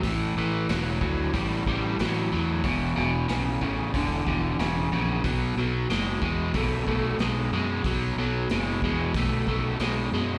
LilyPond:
<<
  \new Staff \with { instrumentName = "Overdriven electric guitar" } { \clef bass \time 4/4 \key b \dorian \tempo 4 = 92 <a, e>8 <a, e>8 <a, fis>8 <a, fis>8 <a, g>8 <a, g>8 <a, fis>8 <a, fis>8 | <e, b,>8 <e, b,>8 <e, cis>8 <e, cis>8 <e, d>8 <e, d>8 <e, cis>8 <e, cis>8 | <b, fis>8 <b, fis>8 <b, gis>8 <b, gis>8 <b, a>8 <b, a>8 <b, gis>8 <b, gis>8 | <b, fis>8 <b, fis>8 <b, gis>8 <b, gis>8 <b, a>8 <b, a>8 <b, gis>8 <b, gis>8 | }
  \new Staff \with { instrumentName = "Fingered electric bass" } { \clef bass \time 4/4 \key b \dorian a,,8 a,,8 e,,8 d,8 a,,8 a,,8 a,,8 e,8 | e,,8 e,,8 b,,8 a,,8 e,,8 e,,8 e,,8 ais,,8 | b,,8 b,,8 fis,,8 e,8 b,,8 b,,8 b,,8 fis,8 | b,,8 b,,8 fis,,8 e,8 b,,8 b,,8 b,,8 fis,8 | }
  \new DrumStaff \with { instrumentName = "Drums" } \drummode { \time 4/4 <hho bd>4 <hho sn>8 bd8 <hho bd>8 bd8 <hho sn>4 | <hho bd>4 <hho sn>8 bd8 <hho bd>8 bd8 <hho sn>4 | <hho bd>4 <hho sn>8 bd8 <hho bd>8 bd8 <hho sn>4 | <hho bd>4 <hho sn>8 bd8 <hho bd>8 bd8 <hho sn>4 | }
>>